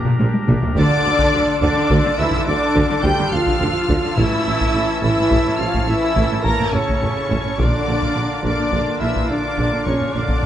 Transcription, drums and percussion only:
0.05 taiko mid medium
0.20 taiko high loud
0.34 taiko high medium
0.48 taiko mid loud
0.62 taiko low medium
0.76 taiko loud
1.19 taiko medium
1.62 taiko medium
1.90 taiko medium
2.32 taiko medium
2.76 taiko medium
3.04 taiko medium
3.18 taiko low-mid medium
3.32 taiko low-mid medium
3.46 taiko medium
3.61 taiko low-mid medium
3.89 taiko medium
4.18 taiko loud
4.61 taiko medium
5.03 taiko medium
5.32 taiko medium
5.74 taiko medium
6.17 taiko medium
6.45 taiko medium
6.60 taiko low-mid soft
6.75 taiko low-mid medium
6.89 taiko medium
7.03 taiko low-mid medium
7.31 taiko medium
7.59 taiko medium
8.02 taiko medium
8.45 taiko medium
8.73 taiko medium
9.16 taiko medium
9.58 taiko medium
9.87 taiko medium
10.00 taiko low-mid soft
10.15 taiko low-mid soft
10.29 taiko medium
10.43 taiko low-mid soft

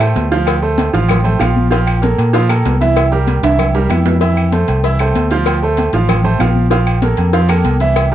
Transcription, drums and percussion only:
0.00 cowbell medium
0.00 high conga soft
0.00 low agogo loud
0.00 claves medium
0.15 cowbell medium
0.15 high conga medium
0.15 low timbale medium
0.15 low agogo medium
0.32 cowbell medium
0.47 cowbell loud
0.47 high conga soft
0.47 low agogo loud
0.47 claves medium
0.63 high conga soft
0.78 cowbell medium
0.78 high conga loud
0.78 low agogo medium
0.95 cowbell medium
1.08 cowbell loud
1.08 high conga soft
1.08 low conga medium
1.08 low agogo loud
1.08 claves medium
1.25 high conga soft
1.25 low conga medium
1.25 low agogo medium
1.40 cowbell medium
1.40 high conga medium
1.40 low timbale medium
1.40 low agogo loud
1.40 claves medium
1.56 high conga medium
1.72 cowbell loud
1.72 low agogo medium
1.87 low agogo loud
1.87 claves medium
2.03 cowbell medium
2.03 high conga loud
2.18 cowbell medium
2.18 low agogo loud
2.34 cowbell loud
2.34 high conga soft
2.49 cowbell medium
2.49 high conga soft
2.49 low agogo loud
2.49 claves medium
2.66 cowbell medium
2.66 high conga medium
2.66 low timbale medium
2.66 low agogo medium
2.81 cowbell medium
2.81 high conga medium
2.96 cowbell loud
2.96 high conga soft
2.96 low agogo loud
2.96 claves medium
3.12 high conga soft
3.27 cowbell medium
3.27 high conga medium
3.27 low agogo medium
3.43 cowbell medium
3.43 high timbale loud
3.58 cowbell loud
3.58 high conga soft
3.58 low conga medium
3.58 high timbale medium
3.58 low agogo loud
3.58 claves medium
3.75 high conga soft
3.75 low conga medium
3.75 high timbale medium
3.75 low agogo medium
3.90 cowbell medium
3.90 high conga medium
3.90 low timbale medium
3.90 low agogo loud
3.90 claves medium
4.05 high conga medium
4.05 low timbale loud
4.21 cowbell loud
4.21 high conga soft
4.21 low agogo medium
4.37 high conga soft
4.37 low agogo loud
4.37 claves medium
4.52 cowbell medium
4.52 high conga medium
4.68 cowbell medium
4.68 low agogo medium
4.84 cowbell loud
4.84 high conga soft
4.99 cowbell medium
4.99 high conga soft
4.99 low agogo loud
4.99 claves medium
5.15 cowbell medium
5.15 high conga medium
5.15 low agogo medium
5.31 cowbell medium
5.46 cowbell loud
5.46 high conga soft
5.46 low agogo loud
5.46 claves medium
5.63 high conga soft
5.77 cowbell medium
5.77 high conga medium
5.77 low agogo medium
5.93 cowbell medium
6.09 cowbell loud
6.09 high conga soft
6.09 low conga medium
6.09 low agogo loud
6.09 claves medium
6.24 high conga soft
6.24 low conga medium
6.24 low agogo medium
6.39 cowbell medium
6.39 high conga medium
6.39 low timbale medium
6.39 low agogo loud
6.39 claves medium
6.56 high conga medium
6.71 cowbell loud
6.71 high conga soft
6.71 low agogo medium
6.87 high conga soft
6.87 low agogo loud
6.87 claves medium
7.02 cowbell medium
7.02 high conga loud
7.17 cowbell medium
7.17 low agogo medium
7.33 cowbell loud
7.33 high conga soft
7.49 cowbell medium
7.49 high conga soft
7.49 low agogo loud
7.49 claves medium
7.64 cowbell medium
7.64 high conga medium
7.64 low agogo medium
7.80 cowbell medium
7.80 high conga medium
7.96 cowbell loud
7.96 high conga soft
7.96 low agogo loud
7.96 claves medium
8.11 high conga soft

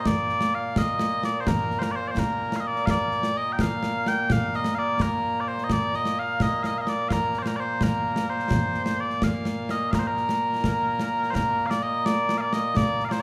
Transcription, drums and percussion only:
0.06 concert bass drum medium
0.06 snare loud
0.29 snare soft
0.41 snare medium
0.76 concert bass drum medium
0.76 snare loud
0.99 snare medium
1.23 snare medium
1.47 concert bass drum medium
1.47 snare loud
1.71 snare soft
1.82 snare medium
2.17 concert bass drum medium
2.17 snare loud
2.52 snare medium
2.76 snare soft
2.87 concert bass drum medium
2.87 snare loud
3.11 snare soft
3.23 snare medium
3.59 concert bass drum medium
3.59 snare loud
3.83 snare medium
4.06 snare medium
4.30 concert bass drum medium
4.30 snare loud
4.54 snare soft
4.64 snare medium
5.00 concert bass drum medium
5.00 snare medium
5.58 snare soft
5.70 concert bass drum medium
5.70 snare medium
5.94 snare soft
6.05 snare medium
6.40 concert bass drum soft
6.40 snare medium
6.64 snare medium
6.87 snare medium
7.10 concert bass drum medium
7.10 snare medium
7.34 snare soft
7.46 snare medium
7.81 concert bass drum medium
7.81 snare loud
8.16 snare medium
8.39 snare soft
8.51 concert bass drum medium
8.51 snare loud
8.74 snare soft
8.86 snare medium
9.10 snare soft
9.22 concert bass drum medium
9.22 snare loud
9.45 snare medium
9.69 snare medium
9.93 concert bass drum medium
9.93 snare medium
10.17 snare soft
10.29 snare medium
10.53 snare soft
10.64 concert bass drum medium
10.64 snare medium
10.99 snare medium
11.23 snare soft
11.35 concert bass drum medium
11.35 snare medium
11.71 snare medium
12.06 snare loud
12.29 snare medium
12.53 snare medium
12.77 concert bass drum medium
12.77 snare loud
13.00 snare soft
13.11 snare medium

